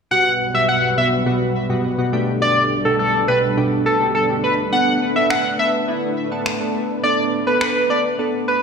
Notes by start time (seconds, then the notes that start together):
0.11 B2 G3 B3 F#4 B4 F#5
0.54 B2 G3 B3 F#4 E5
0.69 F#5
0.97 B2 G3 B3 F#4 E5
1.26 B2 G3 B3 F#4
1.69 B2 G3 B3 F#4
1.98 B2 G3 B3 F#4
2.13 B2 G3 A3 D4 G4 A4
2.42 D5
2.85 B2 A3 D4 G4 A4
2.99 A4
3.28 B2 A3 D4 G4 B4
3.57 B2 A3 D4 G4
3.86 A4
4.01 B2 A3 D4 G4
4.15 A4
4.29 B2 A3 D4 G4
4.44 B4
4.72 A3 B3 D4 A4 B4 F#5
5.16 B3 D4 A4 E5
5.30 F#5, finger snap
5.59 B3 D4 A4 E5
5.88 B3 D4 E4
6.31 B3 D4 A4
6.46 finger snap
6.60 B3 D4 A4
7.03 B3 D4 A4 D5
7.47 B3 D4 A4 B4
7.61 B4, finger snap
7.90 B3 D4 A4 D5
8.19 B3 D4 A4
8.48 B4